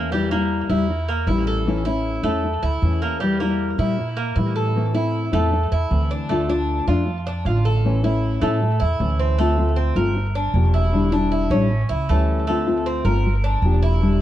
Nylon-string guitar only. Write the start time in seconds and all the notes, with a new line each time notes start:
Already playing: E3 A3 C#4 E4
0.13 E3 G3 E4
0.32 G3 E4
0.70 G3 E4
0.90 muted nylon-string guitar stroke
1.28 E3 G3 E4
1.66 E3 A3 C#4 E4
1.86 A3 C#4 E4
2.24 A3 C#4 E4
2.44 muted nylon-string guitar stroke
2.83 E3 A3 C#4 E4
3.22 E3 G3 E4
3.41 G3 E4
3.79 G3 E4
3.98 muted nylon-string guitar stroke
4.37 E3 G3 E4
4.76 E3 A3 C4 E4
4.95 A3 C4 E4
5.32 A3 C4 E4
5.52 muted nylon-string guitar stroke
5.91 E3 A3 C4 E4
6.30 D3 A3 D4 F4
6.49 A3 D4 F4
6.88 A3 D4 F4
7.07 muted nylon-string guitar stroke
7.46 D3 A3 D4 F4
7.85 E3 A3 C#4 E4
8.04 A3 C#4 E4
8.42 A3 C#4 E4
8.62 muted nylon-string guitar stroke
9.00 E3 A3 C#4 E4
9.39 D3 A3 C4 F4
9.58 A3 C4 F4
9.97 A3 C4 F4
10.16 muted nylon-string guitar stroke
10.54 F3 A#3 D4 G4
10.93 D3 G3 D4 E4
11.12 G3 D4 E4
11.52 G3 D4 E4
11.70 muted nylon-string guitar stroke
12.10 E3 G3 C#4 E4
12.48 D3 A3 C4 F4
12.67 A3 C4 F4
13.06 A3 C4 F4
13.25 muted nylon-string guitar stroke
13.64 F3 A#3 D4 G4
14.02 D3 G3 D4 E4